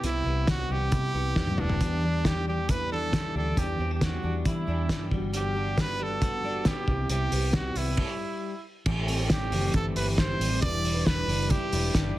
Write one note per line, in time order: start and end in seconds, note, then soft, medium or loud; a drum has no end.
0.00 0.22 C2 medium
0.00 0.25 C3 medium
0.00 1.80 C3 medium
0.00 0.48 G3 medium
0.00 0.24 G3 medium
0.00 closed hi-hat medium
0.04 0.25 B3 medium
0.04 0.26 E4 medium
0.04 0.46 E4 medium
0.04 0.26 G4 medium
0.26 0.63 C2 medium
0.26 0.69 G3 soft
0.26 0.70 B3 medium
0.26 0.72 G4 medium
0.47 1.36 G3 medium
0.47 0.73 F#4 medium
0.47 kick medium
0.47 snare medium
0.47 closed hi-hat medium
0.69 0.89 C2 medium
0.69 1.14 G3 soft
0.69 1.15 B3 medium
0.69 1.14 B3 medium
0.69 1.16 E4 medium
0.69 1.61 G4 medium
0.69 1.17 G4 medium
0.92 1.11 C3 loud
0.92 2.06 E4 medium
0.92 kick loud
0.92 closed hi-hat medium
1.14 1.33 C2 medium
1.14 1.36 G3 medium
1.14 1.58 B3 soft
1.14 1.37 B3 medium
1.14 1.37 E4 medium
1.14 1.38 G4 medium
1.36 1.55 E2 medium
1.36 2.24 G3 medium
1.36 1.57 G3 medium
1.36 1.58 B3 medium
1.36 1.59 E4 medium
1.36 1.60 G4 medium
1.36 kick medium
1.36 snare soft
1.47 high tom soft
1.58 1.78 E1 medium
1.58 1.80 G3 medium
1.58 2.02 B3 soft
1.58 1.80 B3 medium
1.58 2.27 D4 medium
1.58 1.81 E4 medium
1.58 1.82 G4 medium
1.58 mid tom medium
1.69 floor tom medium
1.80 3.57 E2 medium
1.80 3.31 E2 medium
1.80 2.02 E3 medium
1.80 2.03 B3 medium
1.80 2.03 D4 medium
1.80 2.03 G4 medium
1.80 kick medium
1.80 closed hi-hat medium
2.03 2.46 E3 medium
2.03 2.48 B3 medium
2.03 2.47 D4 soft
2.03 2.49 D4 medium
2.03 2.50 G4 medium
2.25 3.13 G3 medium
2.25 2.47 G4 medium
2.25 kick medium
2.25 snare medium
2.25 closed hi-hat medium
2.48 2.90 E3 soft
2.48 2.92 B3 medium
2.48 2.91 D4 soft
2.48 2.93 D4 medium
2.48 2.72 G4 medium
2.48 2.93 G4 medium
2.69 4.44 E4 medium
2.69 2.91 B4 medium
2.69 kick loud
2.69 closed hi-hat medium
2.91 3.11 E3 medium
2.91 3.12 B3 medium
2.91 3.35 D4 soft
2.91 3.13 D4 medium
2.91 3.14 G4 medium
2.91 3.33 A4 medium
3.12 3.34 E3 medium
3.12 4.02 G3 medium
3.12 3.35 B3 medium
3.12 3.36 G4 medium
3.12 kick medium
3.12 snare medium
3.12 closed hi-hat medium
3.35 3.54 D2 medium
3.35 3.55 E3 medium
3.35 3.56 B3 medium
3.35 3.80 D4 soft
3.35 3.56 D4 medium
3.35 3.57 G4 medium
3.35 3.60 A4 medium
3.56 3.76 E2 medium
3.56 5.16 E2 medium
3.56 3.77 E3 medium
3.56 3.78 B3 medium
3.56 3.79 D4 medium
3.56 3.79 G4 medium
3.56 3.94 G4 medium
3.56 kick loud
3.56 closed hi-hat medium
3.78 4.16 E2 medium
3.78 4.21 E3 soft
3.78 4.23 B3 medium
3.78 3.91 C4 medium
3.78 4.24 D4 medium
3.78 4.25 G4 medium
3.91 4.23 D4 soft
3.91 4.06 G4 medium
4.01 4.89 G3 medium
4.01 4.35 F#4 medium
4.01 kick medium
4.01 snare medium
4.01 closed hi-hat medium
4.22 4.42 E2 medium
4.22 4.66 E3 soft
4.22 4.67 B3 medium
4.22 4.67 D4 soft
4.22 4.68 D4 medium
4.22 4.69 G4 medium
4.45 4.64 E3 medium
4.45 5.16 E4 medium
4.45 5.09 E4 medium
4.45 kick loud
4.45 closed hi-hat medium
4.67 4.86 E2 medium
4.67 4.87 E3 medium
4.67 4.89 B3 medium
4.67 5.16 D4 soft
4.67 4.90 D4 medium
4.67 4.90 G4 medium
4.89 5.08 G2 medium
4.89 5.10 E3 medium
4.89 5.12 G3 medium
4.89 5.11 B3 medium
4.89 5.11 D4 medium
4.89 5.12 G4 medium
4.89 kick medium
4.89 snare medium
4.89 closed hi-hat medium
5.11 6.61 G1 medium
5.11 5.31 G3 medium
5.11 5.33 G3 medium
5.11 5.32 B3 medium
5.11 5.33 D4 medium
5.11 5.33 F#4 medium
5.11 kick medium
5.33 5.53 G3 medium
5.33 7.54 G3 medium
5.33 5.54 B3 medium
5.33 5.55 D4 medium
5.33 5.55 F#4 medium
5.33 closed hi-hat medium
5.37 5.82 G4 medium
5.54 5.98 G3 medium
5.54 6.00 B3 medium
5.54 5.99 D4 medium
5.54 5.98 D4 medium
5.54 6.00 F#4 medium
5.78 6.65 B3 medium
5.78 6.04 B4 loud
5.78 kick medium
5.78 snare medium
5.78 closed hi-hat medium
5.99 6.42 G3 soft
5.99 6.43 B3 soft
5.99 6.43 D4 medium
5.99 6.44 D4 medium
5.99 6.45 F#4 medium
6.03 6.69 A4 loud
6.22 6.92 F#4 medium
6.22 kick loud
6.22 closed hi-hat medium
6.43 6.64 G3 medium
6.43 6.65 B3 medium
6.43 6.93 D4 medium
6.43 6.66 D4 medium
6.43 6.66 F#4 medium
6.65 6.86 G3 medium
6.65 6.92 B3 medium
6.65 6.87 B3 medium
6.65 6.88 D4 medium
6.65 6.89 F#4 medium
6.65 7.11 G4 medium
6.65 kick loud
6.65 snare medium
6.65 closed hi-hat medium
6.87 7.06 C2 medium
6.87 7.09 C3 medium
6.87 7.09 G3 medium
6.87 7.09 B3 medium
6.87 7.10 E4 medium
6.87 7.10 G4 medium
6.87 kick medium
7.09 7.28 C2 loud
7.09 7.32 C3 medium
7.09 8.02 C3 medium
7.09 7.30 G3 medium
7.09 7.31 B3 medium
7.09 7.32 E4 medium
7.09 7.32 G4 medium
7.09 7.56 G4 medium
7.09 closed hi-hat medium
7.31 7.69 C2 medium
7.31 7.75 G3 medium
7.31 7.76 B3 medium
7.31 7.77 E4 medium
7.31 7.78 G4 medium
7.31 open hi-hat medium
7.53 8.53 G3 soft
7.53 7.79 F#4 medium
7.53 kick medium
7.53 snare medium
7.53 closed hi-hat medium
7.75 7.94 C2 medium
7.75 7.98 G3 medium
7.75 7.98 B3 medium
7.75 8.03 B3 medium
7.75 8.65 E4 medium
7.75 7.99 E4 medium
7.75 7.99 G4 medium
7.75 open hi-hat medium
7.97 kick medium
7.97 crash medium
8.86 9.49 A1 medium
8.86 9.19 A2 medium
8.86 10.63 A2 medium
8.86 9.20 E3 medium
8.86 9.20 G3 medium
8.86 9.19 C4 medium
8.86 9.18 G4 medium
8.86 kick loud
8.86 crash medium
9.08 9.51 C4 medium
9.08 open hi-hat medium
9.19 9.53 G3 soft
9.19 9.53 C4 soft
9.19 9.52 G4 medium
9.30 10.41 G3 medium
9.30 9.72 G4 medium
9.30 kick medium
9.30 snare loud
9.30 closed hi-hat medium
9.52 9.71 F#1 medium
9.52 9.97 E3 medium
9.52 9.98 G3 medium
9.52 10.18 C4 medium
9.52 9.98 C4 medium
9.52 9.99 G4 medium
9.52 open hi-hat medium
9.74 9.93 G1 medium
9.74 10.88 E3 medium
9.74 9.85 A4 medium
9.74 kick loud
9.74 closed hi-hat medium
9.96 10.33 G1 medium
9.96 10.17 E3 medium
9.96 10.18 G3 medium
9.96 10.19 C4 medium
9.96 10.88 E4 medium
9.96 10.19 G4 medium
9.96 10.07 B4 medium
9.96 open hi-hat medium
10.18 10.61 E3 medium
10.18 10.62 G3 medium
10.18 10.67 C4 medium
10.18 10.60 C5 medium
10.18 kick medium
10.18 snare medium
10.18 closed hi-hat medium
10.39 10.59 A1 medium
10.39 11.06 G3 medium
10.39 open hi-hat medium
10.62 11.25 E1 medium
10.62 12.19 E2 medium
10.62 10.95 E3 medium
10.62 10.96 G3 medium
10.62 10.95 D4 medium
10.62 10.94 E4 medium
10.62 10.93 B4 medium
10.62 11.07 D5 loud
10.62 kick loud
10.62 closed hi-hat medium
10.85 11.28 D4 medium
10.85 open hi-hat medium
10.94 11.27 D4 soft
10.94 11.28 E4 soft
10.94 11.28 B4 medium
11.06 12.17 G3 medium
11.06 11.52 B4 loud
11.06 kick medium
11.06 snare loud
11.06 closed hi-hat medium
11.27 11.56 F#1 medium
11.27 11.71 G3 medium
11.27 11.72 D4 medium
11.27 11.94 D4 medium
11.27 11.73 E4 medium
11.27 11.74 B4 medium
11.27 open hi-hat medium
11.50 12.19 E3 medium
11.50 12.17 G4 medium
11.50 kick loud
11.50 closed hi-hat medium
11.72 11.91 E1 medium
11.72 11.92 G3 medium
11.72 11.94 D4 medium
11.72 12.19 E4 medium
11.72 11.94 E4 medium
11.72 11.95 B4 medium
11.72 open hi-hat medium
11.93 12.14 G1 medium
11.93 12.19 G3 medium
11.93 12.19 D4 medium
11.93 12.19 E4 medium
11.93 12.19 B4 medium
11.93 kick loud
11.93 snare medium
11.93 closed hi-hat medium